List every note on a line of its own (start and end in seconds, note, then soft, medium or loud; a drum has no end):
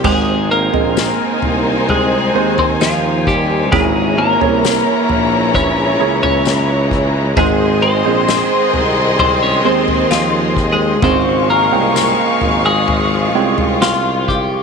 0.03 0.69 G#1 loud
0.03 1.38 G#2 medium
0.03 3.69 D#3 medium
0.03 0.69 G#3 medium
0.03 0.48 G#3 medium
0.03 0.69 C4 medium
0.03 3.69 C4 medium
0.03 0.70 D#4 medium
0.03 3.69 D#4 medium
0.03 0.70 G#4 medium
0.03 0.51 G#4 medium
0.03 0.70 C5 medium
0.03 3.69 C5 medium
0.03 3.69 G#5 medium
0.03 kick loud
0.03 floor tom loud
0.03 crash loud
0.51 1.85 A#3 medium
0.51 1.90 A#4 medium
0.73 1.16 A#1 medium
0.73 2.26 G#3 medium
0.73 2.26 C4 medium
0.73 2.26 D#4 medium
0.73 2.26 G#4 medium
0.73 2.27 D#5 medium
0.73 floor tom medium
0.97 snare loud
0.97 tambourine medium
1.42 2.31 C2 medium
1.42 floor tom medium
1.89 2.54 G#3 medium
1.89 2.59 G#4 medium
1.89 floor tom medium
2.35 3.74 D#2 medium
2.35 3.66 D#3 medium
2.35 3.66 C4 medium
2.35 3.66 D#4 medium
2.35 3.66 C5 medium
2.58 2.65 C4 medium
2.58 2.65 C5 medium
2.58 floor tom medium
2.81 3.24 F3 medium
2.81 3.27 F4 medium
2.81 snare loud
2.81 tambourine medium
3.27 3.70 G3 medium
3.27 3.72 G4 medium
3.27 kick medium
3.72 4.37 G#1 loud
3.72 5.05 G#2 medium
3.72 7.33 E3 medium
3.72 4.15 G#3 medium
3.72 4.37 A#3 medium
3.72 5.53 A#3 medium
3.72 7.33 C#4 medium
3.72 4.38 C#4 medium
3.72 4.38 E4 medium
3.72 7.33 E4 medium
3.72 4.19 G#4 loud
3.72 4.38 G#4 medium
3.72 4.38 A#4 medium
3.72 7.33 C#5 medium
3.72 7.33 A#5 medium
3.72 kick loud
3.72 floor tom loud
4.18 5.51 A#3 medium
4.18 5.55 A#4 loud
4.41 4.83 C2 medium
4.41 5.92 A#3 medium
4.41 5.92 C#4 medium
4.41 5.92 E4 medium
4.41 5.92 G#4 medium
4.41 5.92 C#5 medium
4.41 floor tom medium
4.64 snare loud
4.64 tambourine medium
5.09 5.96 A#1 medium
5.09 floor tom medium
5.54 10.99 G#3 medium
5.54 6.19 C#4 medium
5.54 6.22 C#5 loud
5.54 kick medium
5.54 floor tom medium
5.99 7.33 C#2 loud
5.99 7.30 A#3 medium
5.99 7.30 C#4 medium
5.99 7.30 E4 medium
5.99 7.30 G#4 medium
5.99 7.30 C#5 medium
6.23 6.88 C#4 medium
6.23 6.87 C#5 medium
6.23 floor tom medium
6.45 snare loud
6.45 tambourine medium
6.91 kick loud
7.36 8.01 G#1 loud
7.36 8.70 G#2 medium
7.36 10.99 D#3 medium
7.36 8.02 G#3 medium
7.36 7.80 G#3 medium
7.36 8.02 C4 medium
7.36 10.99 C4 loud
7.36 8.02 D#4 medium
7.36 10.99 G#4 medium
7.36 8.02 G#4 medium
7.36 7.84 G#4 loud
7.36 8.02 C5 medium
7.36 10.99 D#5 medium
7.36 10.98 C6 loud
7.36 kick loud
7.36 floor tom loud
7.82 9.16 C4 medium
7.82 8.77 C5 loud
8.05 8.47 A#1 loud
8.05 9.57 G#3 medium
8.05 9.57 C4 medium
8.05 9.57 D#4 medium
8.05 9.57 G#4 medium
8.05 9.57 C5 medium
8.28 snare medium
8.28 tambourine medium
8.73 9.61 C2 medium
8.73 floor tom medium
8.77 9.19 A#4 loud
9.19 9.41 C4 medium
9.19 9.42 C5 loud
9.19 floor tom medium
9.43 9.64 C#4 medium
9.43 9.64 C#5 medium
9.65 11.04 D#2 medium
9.65 10.96 G#3 medium
9.65 10.96 C4 medium
9.65 10.08 C4 medium
9.65 10.96 D#4 medium
9.65 10.96 G#4 medium
9.65 10.08 C5 medium
9.65 10.96 D#5 medium
9.88 floor tom medium
10.11 10.54 F3 medium
10.11 10.54 F4 loud
10.11 snare loud
10.11 tambourine medium
10.57 kick loud
10.73 11.01 G#3 medium
10.73 11.04 G#4 medium
11.02 11.68 G#1 loud
11.02 12.37 G#2 medium
11.02 11.68 C#3 medium
11.02 14.63 F3 medium
11.02 11.68 G#3 medium
11.02 12.86 G#3 medium
11.02 14.63 G#3 medium
11.02 11.69 C4 medium
11.02 11.46 C4 medium
11.02 11.69 F4 medium
11.02 11.69 G#4 medium
11.02 11.50 C5 medium
11.02 14.63 F5 medium
11.02 14.63 C#6 loud
11.02 kick loud
11.02 floor tom loud
11.50 12.61 A#3 medium
11.50 12.65 A#4 medium
11.72 12.15 C2 medium
11.72 13.26 G#3 medium
11.72 13.26 C4 medium
11.72 13.26 C#4 medium
11.72 13.26 F4 medium
11.72 13.26 G5 medium
11.96 snare medium
11.96 tambourine medium
12.41 13.36 G#1 loud
12.41 floor tom medium
12.66 13.78 G#3 medium
12.66 13.78 G#4 medium
12.88 14.63 F4 medium
12.88 floor tom medium
13.35 14.63 C2 medium
13.35 14.63 G#3 medium
13.35 14.63 C4 medium
13.35 14.63 C#4 medium
13.35 14.63 F4 medium
13.35 14.63 G5 medium
13.58 floor tom medium
13.82 14.28 F4 medium
13.82 snare loud
13.82 tambourine medium
14.28 14.63 G4 medium
14.28 kick medium